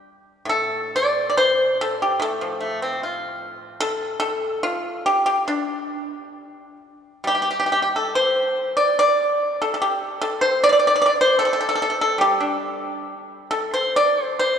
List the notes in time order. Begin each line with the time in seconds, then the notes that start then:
Already playing: G3 D4
0.45 A2
0.49 A4
0.96 D5
1.30 D5
1.37 C5
1.81 A4
2.02 G4
2.20 A2 A4
2.41 F3
2.61 A3
2.82 C4
3.03 F4
3.80 A4
4.20 A4
4.63 F4
5.06 G4
5.26 G4
5.48 D4
7.24 G3 G4
7.35 G4
7.42 G4
7.51 G4
7.60 G4
7.66 G4
7.72 G4
7.82 G4
7.96 A4
8.15 C5
8.77 D5
8.99 D5
9.62 A4
9.74 A4
9.82 G4
10.22 A4
10.41 C5
10.64 D5
10.69 D5
10.79 D5
10.87 D5
10.96 D5
11.02 D5
11.06 D5
11.21 C5
11.39 A4
11.45 A4
11.53 A4
11.61 A4
11.69 A4
11.75 A4
11.82 A4
11.90 A4
12.01 A4
12.18 G3 G4
12.40 D4
13.51 A4
13.74 C5
13.96 D5
14.23 C5
14.39 C5